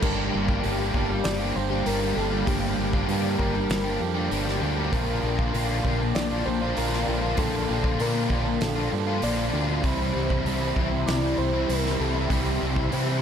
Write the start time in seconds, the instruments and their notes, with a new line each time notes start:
0.02 fingered electric bass G1, overdriven electric guitar G2 D3 G3 A#3 D4 G4, twelve-string acoustic guitar F3, analog synth pad G4 F5 G5, soft synth lead A#4, kick, crash
0.32 fingered electric bass G1, overdriven electric guitar G3 A#3 D4 G4
0.48 overdriven electric guitar G3 A#3 D4 G4, kick
0.63 fingered electric bass G1, overdriven electric guitar G2 D3 G3 A#3 D4 G4, twelve-string acoustic guitar A#3, open hi-hat
0.79 overdriven electric guitar G3 A#3 D4 G4
0.93 fingered electric bass G1, overdriven electric guitar G3 A#3 D4 G4, twelve-string acoustic guitar D4, kick
1.09 muted overdriven electric guitar stroke
1.24 fingered electric bass G1, twelve-string acoustic guitar F3, soft synth lead D5, snare, open hi-hat
1.40 overdriven electric guitar G3 A#3 D4 G4
1.56 fingered electric bass G1, twelve-string acoustic guitar F3, overdriven electric guitar G3 A#3 D4 G4, soft synth lead C5, muted overdriven electric guitar stroke
1.71 overdriven electric guitar G3 A#3 D4 G4
1.85 fingered electric bass G1, overdriven electric guitar G2 D3 G3 A#3 D4 G4, twelve-string acoustic guitar F3, soft synth lead A#4, open hi-hat
2.16 fingered electric bass G1, twelve-string acoustic guitar F3, overdriven electric guitar G3 A#3 D4 G4, soft synth lead A4
2.30 overdriven electric guitar G3 A#3 D4 G4
2.47 fingered electric bass G1, overdriven electric guitar G2 D3 G3 A#3 D4 G4, twelve-string acoustic guitar F3, soft synth lead G4, kick, open hi-hat
2.77 fingered electric bass G1, overdriven electric guitar G3 A#3 D4 G4
2.93 overdriven electric guitar G3 A#3 D4 G4, kick
3.08 fingered electric bass G2, overdriven electric guitar G2 D3 G3 A#3 D4 G4, twelve-string acoustic guitar A#3, open hi-hat
3.23 overdriven electric guitar G3 A#3 D4 G4
3.39 fingered electric bass G1, overdriven electric guitar G3 A#3 D4 G4, twelve-string acoustic guitar D4, soft synth lead A#4, kick
3.55 muted overdriven electric guitar stroke
3.70 fingered electric bass G1, twelve-string acoustic guitar F3, snare, open hi-hat
3.84 overdriven electric guitar G3 A#3 D4 G4
3.99 fingered electric bass F2, twelve-string acoustic guitar F3, overdriven electric guitar G3 A#3 D4 G4, muted overdriven electric guitar stroke
4.14 overdriven electric guitar G3 A#3 D4 G4
4.30 fingered electric bass G1, overdriven electric guitar G2 D3 G3 A#3 D4 G4, twelve-string acoustic guitar F3, open hi-hat
4.48 snare
4.60 fingered electric bass D2, twelve-string acoustic guitar F3, overdriven electric guitar G3 A#3 D4 G4
4.77 overdriven electric guitar G3 A#3 D4 G4
4.91 fingered electric bass A#1, overdriven electric guitar A#2 D3 A#3 D4 F4, twelve-string acoustic guitar F3, soft synth lead A#4, analog synth pad D5 A5, kick, open hi-hat
5.22 fingered electric bass A#1, overdriven electric guitar D3 A#3 D4 F4
5.37 overdriven electric guitar A#3 D4 F4, kick
5.52 fingered electric bass A#1, overdriven electric guitar A#2 D3 A#3 D4 F4, open hi-hat
5.69 overdriven electric guitar A#3 D4 F4
5.84 fingered electric bass A#1, overdriven electric guitar D3 A#3 D4 F4, twelve-string acoustic guitar D4, kick
6.01 muted overdriven electric guitar stroke
6.15 fingered electric bass A#1, twelve-string acoustic guitar F3, soft synth lead D5, snare, open hi-hat
6.30 overdriven electric guitar A#3 D4 F4
6.45 fingered electric bass A#1, overdriven electric guitar D3 A#3 D4 F4, twelve-string acoustic guitar F3, soft synth lead C5, muted overdriven electric guitar stroke
6.60 overdriven electric guitar A#3 D4 F4
6.75 fingered electric bass A#1, overdriven electric guitar A#2 D3 A#3 D4 F4, twelve-string acoustic guitar F3, soft synth lead A#4, open hi-hat
6.93 snare
7.06 fingered electric bass A#1, overdriven electric guitar D3 A#3 D4 F4, twelve-string acoustic guitar F3
7.21 overdriven electric guitar A#3 D4 F4
7.36 fingered electric bass A#1, overdriven electric guitar A#2 D3 A#3 D4 F4, twelve-string acoustic guitar F3, soft synth lead A4, kick, open hi-hat
7.68 fingered electric bass A#1, overdriven electric guitar D3 A#3 D4 F4
7.83 overdriven electric guitar A#3 D4 F4, kick
7.99 overdriven electric guitar A#2 D3 A#3 D4 F4, fingered electric bass A#2, soft synth lead A#4, open hi-hat
8.14 overdriven electric guitar A#3 D4 F4
8.29 fingered electric bass A#1, overdriven electric guitar D3 A#3 D4 F4, twelve-string acoustic guitar D4, kick
8.46 muted overdriven electric guitar stroke
8.61 fingered electric bass A#1, twelve-string acoustic guitar F3, soft synth lead A4, snare, open hi-hat
8.76 overdriven electric guitar A#3 D4 F4
8.91 fingered electric bass G2, overdriven electric guitar D3 A#3 D4 F4, twelve-string acoustic guitar F3, muted overdriven electric guitar stroke
9.07 overdriven electric guitar A#3 D4 F4
9.22 fingered electric bass A#1, overdriven electric guitar A#2 D3 A#3 D4 F4, twelve-string acoustic guitar F3, soft synth lead D5, open hi-hat
9.53 fingered electric bass D2, overdriven electric guitar D3 A#3 D4 F4, twelve-string acoustic guitar F3
9.68 overdriven electric guitar A#3 D4 F4
9.83 fingered electric bass C2, overdriven electric guitar C3 E3 G3 C4 E4, twelve-string acoustic guitar G3, analog synth pad G4 E5 C6, soft synth lead C5, kick, open hi-hat
10.15 fingered electric bass C2, overdriven electric guitar E3 G3 C4 E4
10.30 overdriven electric guitar G3 C4 E4, kick
10.45 fingered electric bass C2, overdriven electric guitar C3 E3 G3 C4 E4, twelve-string acoustic guitar C4, open hi-hat
10.61 overdriven electric guitar G3 C4 E4
10.76 fingered electric bass C2, overdriven electric guitar E3 G3 C4 E4, twelve-string acoustic guitar E4, kick
10.91 muted overdriven electric guitar stroke
11.07 fingered electric bass C2, twelve-string acoustic guitar G3, soft synth lead D5, snare, open hi-hat
11.21 overdriven electric guitar G3 C4 E4
11.37 fingered electric bass C2, overdriven electric guitar E3 G3 C4 E4, twelve-string acoustic guitar G3, soft synth lead C5, muted overdriven electric guitar stroke
11.53 overdriven electric guitar G3 C4 E4
11.68 fingered electric bass C2, overdriven electric guitar C3 E3 G3 C4 E4, twelve-string acoustic guitar G3, soft synth lead A#4, open hi-hat
11.86 snare
11.99 fingered electric bass C2, overdriven electric guitar E3 G3 C4 E4, soft synth lead A4
12.14 overdriven electric guitar G3 C4 E4
12.29 fingered electric bass C2, overdriven electric guitar C3 E3 G3 C4 E4, twelve-string acoustic guitar G3, soft synth lead G4, kick, open hi-hat
12.60 fingered electric bass C2, overdriven electric guitar E3 G3 C4 E4
12.76 overdriven electric guitar G3 C4 E4, kick
12.90 overdriven electric guitar C3 E3 G3 C4 E4, fingered electric bass C3, twelve-string acoustic guitar C4, open hi-hat
13.07 overdriven electric guitar G3 C4 E4